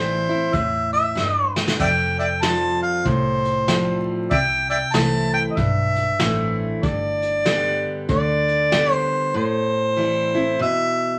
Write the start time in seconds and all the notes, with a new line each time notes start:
Already playing: A1 A2 E3 G3 C4 E4 C5
0.29 C4 E4
0.53 E2 A2 E5, kick, closed hi-hat
0.92 E5, closed hi-hat
1.15 G2, snare
1.56 snare
1.68 snare
1.79 F1 F2 D5 E5 G5, kick, closed hi-hat, splash
2.19 D5 E5 G5, closed hi-hat
2.42 F3 G3 C4 F4 A5, snare, closed hi-hat
2.82 F5
3.05 C2 A2 C5, kick, closed hi-hat
3.45 closed hi-hat
3.68 F3 G3 C4 F4, snare, closed hi-hat
4.31 C2 C3 D5 E5 G5, kick, closed hi-hat
4.70 D5 E5 G5, closed hi-hat
4.93 C2 E3 A3 C4 E4 A5, snare, closed hi-hat
5.34 G5
5.51 D#5
5.57 B1 G2 E5, kick, closed hi-hat
5.96 closed hi-hat
6.20 A1 E3 A3 C4 E4, snare, closed hi-hat
6.83 G1 G2 D5, kick, closed hi-hat
7.22 closed hi-hat
7.45 D3 G3 B3 G4, snare, closed hi-hat
8.09 D2 D3 D5, kick, closed hi-hat
8.48 closed hi-hat
8.72 D3 G3 B3 G4, snare, closed hi-hat
8.93 C5
9.34 A2 C5
9.96 E3 G3 C4 E4
10.35 C4 E4
10.59 B2 E5